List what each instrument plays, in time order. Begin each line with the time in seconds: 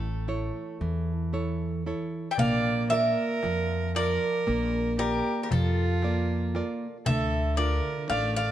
Already playing: upright bass A1, nylon-string guitar A3, bouzouki A4
0.28 nylon-string guitar E4 A4 C#5
0.81 upright bass E2, nylon-string guitar E3
1.33 nylon-string guitar E4 A4 C#5
1.86 nylon-string guitar E4 A4 C#5
2.31 violin E5, bouzouki G5
2.37 upright bass A#1, nylon-string guitar A#3, violin D5, bouzouki F5, darbuka dum
2.65 darbuka tek
2.90 nylon-string guitar F4 A#4 D5, violin A#4, bouzouki E5, darbuka tek
3.43 upright bass F2, nylon-string guitar F3, darbuka tek
3.95 nylon-string guitar F4 A#4 D5, violin A#4, bouzouki D5, darbuka tek
4.22 darbuka tek
4.47 upright bass A#1, nylon-string guitar A#3, darbuka tek
4.99 nylon-string guitar F4 D5, violin G4, bouzouki A#4, darbuka tek
5.43 violin G4, bouzouki A#4
5.51 upright bass F2, nylon-string guitar F3, violin F4, bouzouki A4, darbuka dum
6.02 nylon-string guitar A#3 F4 D5, darbuka tek
6.55 nylon-string guitar F4 A#4 D5, darbuka tek
7.06 upright bass D2, nylon-string guitar D3, violin A4, bouzouki E5, darbuka dum
7.32 darbuka tek
7.57 nylon-string guitar D4 F4, violin A#4, bouzouki D5, darbuka tek
8.10 upright bass A1, nylon-string guitar A3, violin D5, bouzouki F5, darbuka tek
8.36 violin D5, bouzouki F5